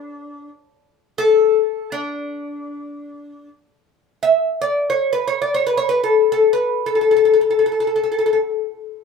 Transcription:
0.00 0.48 D4 medium
1.18 1.94 A4 medium
1.92 3.48 D4 medium
4.23 4.59 E5 medium
4.62 4.88 D5 medium
4.90 5.12 C#5 medium
5.13 5.27 B4 medium
5.28 5.41 C#5 medium
5.42 5.54 D5 medium
5.54 5.66 C#5 medium
5.67 5.77 B4 medium
5.77 5.89 C#5 medium
5.89 6.03 B4 medium
6.04 6.31 A4 medium
6.32 6.53 A4 medium
6.53 6.86 B4 medium
6.86 6.93 A4 medium
6.95 7.00 A4 soft
7.01 7.08 A4 soft
7.11 7.15 A4 soft
7.17 7.24 A4 soft
7.25 7.32 A4 soft
7.34 7.40 A4 soft
7.41 7.47 A4 soft
7.51 7.56 A4 soft
7.59 7.64 A4 soft
7.66 7.71 A4 soft
7.72 7.77 A4 soft
7.80 7.85 A4 soft
7.87 7.93 A4 soft
7.96 8.01 A4 soft
8.04 8.08 A4 soft
8.12 8.16 A4 soft
8.19 8.23 A4 soft
8.26 8.31 A4 soft
8.33 8.38 A4 soft

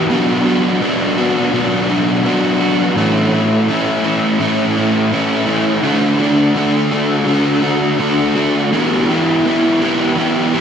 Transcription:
0.09 0.81 B2 loud
0.09 0.80 F#3 loud
0.09 0.47 B3 loud
0.09 0.45 D4 loud
0.09 0.44 F#4 loud
0.46 0.80 B3 medium
0.46 0.82 D4 medium
0.46 0.82 F#4 medium
0.81 1.52 F#3 medium
0.81 1.18 B3 medium
0.81 1.17 D4 medium
0.81 1.16 F#4 medium
1.17 1.53 B3 medium
1.17 1.54 D4 medium
1.17 1.54 F#4 medium
1.52 2.25 B2 medium
1.52 2.23 F#3 medium
1.52 1.89 B3 medium
1.52 1.89 D4 loud
1.52 1.88 F#4 medium
1.89 2.23 B3 medium
1.89 2.25 D4 medium
1.89 2.25 F#4 medium
2.24 2.94 F#3 medium
2.24 2.62 B3 medium
2.24 2.61 D4 medium
2.24 2.59 F#4 medium
2.60 2.96 B3 medium
2.60 2.95 D4 medium
2.60 2.94 F#4 medium
2.96 3.68 A2 loud
2.96 3.67 E3 loud
2.96 3.34 A3 loud
2.96 3.33 C#4 loud
2.96 3.31 E4 loud
3.32 3.68 A3 medium
3.32 3.69 C#4 medium
3.32 3.69 E4 medium
3.68 4.38 E3 medium
3.68 4.04 A3 medium
3.68 4.04 C#4 loud
3.68 4.02 E4 medium
4.03 4.38 A3 medium
4.03 4.39 C#4 medium
4.03 4.40 E4 medium
4.39 5.12 A2 medium
4.39 5.10 E3 medium
4.39 4.77 A3 medium
4.39 4.76 C#4 loud
4.39 4.75 E4 loud
4.76 5.12 A3 medium
4.76 5.13 C#4 medium
4.76 5.13 E4 medium
5.12 5.82 E3 medium
5.12 5.48 A3 medium
5.12 5.47 C#4 medium
5.12 5.45 E4 medium
5.46 5.83 A3 medium
5.46 5.82 C#4 medium
5.46 5.81 E4 medium
5.83 6.53 D3 loud
5.83 6.20 A3 loud
5.83 6.18 D4 loud
5.83 6.18 F#4 loud
6.19 6.55 A3 medium
6.19 6.56 D4 medium
6.19 6.57 F#4 medium
6.54 7.24 D3 medium
6.54 6.92 A3 medium
6.54 6.90 D4 medium
6.54 6.90 F#4 medium
6.91 7.25 A3 medium
6.91 7.26 D4 medium
6.91 7.27 F#4 medium
7.25 7.98 D3 medium
7.25 7.63 A3 medium
7.25 7.62 D4 loud
7.25 7.61 F#4 loud
7.62 7.98 A3 medium
7.62 7.99 D4 medium
7.62 7.99 F#4 medium
7.99 8.69 D3 medium
7.99 8.36 A3 medium
7.99 8.34 D4 medium
7.99 8.34 F#4 medium
8.35 8.70 A3 medium
8.35 8.70 D4 medium
8.35 8.70 F#4 medium
8.72 9.44 E3 loud
8.72 9.11 B3 loud
8.72 9.09 E4 loud
8.72 9.07 G4 loud
9.09 9.45 B3 medium
9.09 9.46 E4 medium
9.09 9.47 G4 medium
9.45 10.14 E3 medium
9.45 9.83 B3 medium
9.45 9.81 E4 medium
9.45 9.80 G4 medium
9.81 10.16 B3 medium
9.81 10.16 E4 medium
9.81 10.18 G4 medium
10.15 10.61 E3 medium
10.15 10.55 B3 medium
10.15 10.53 E4 medium
10.15 10.51 G4 loud
10.53 10.61 B3 medium
10.53 10.61 E4 medium
10.53 10.61 G4 medium

